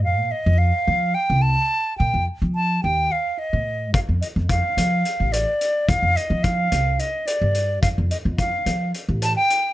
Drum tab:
HH |-------|-------|xxxxxxx|xxxxxxx|
BD |-------|-------|o-o----|o-o----|

HH |xxxxxxx|
BD |o-o----|